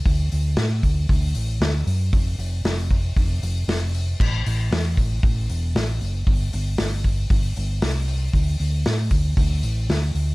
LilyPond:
<<
  \new Staff \with { instrumentName = "Fingered electric bass" } { \clef bass \time 4/4 \key d \dorian \tempo 4 = 116 d,8 d,8 a,8 d,8 d,8 a,,8 d,8 fis,8 | f,,8 f,,8 f,,4 f,,8 f,,8 f,,4 | a,,8 a,,8 e,8 a,,8 a,,8 e,,8 a,,8 fis,,8 | g,,8 g,,8 g,,4 g,,8 g,,8 c,4 |
d,8 d,8 a,8 d,8 d,8 a,,8 d,8 d,8 | }
  \new DrumStaff \with { instrumentName = "Drums" } \drummode { \time 4/4 <hho bd>8 hho8 <hho sn>8 <hho bd>8 <hho bd>8 hho8 <hho sn>8 hho8 | <hho bd>8 hho8 <hho sn>8 <hho bd>8 <hho bd>8 hho8 <hho sn>8 hho8 | <cymc bd>8 hho8 <hho sn>8 <hho bd>8 <hho bd>8 hho8 <hho sn>8 hho8 | <hho bd>8 hho8 <hho sn>8 <hho bd>8 <hho bd>8 hho8 <hho sn>8 hho8 |
<hho bd>8 hho8 <hho sn>8 <hho bd>8 <hho bd>8 hho8 <hho sn>8 hho8 | }
>>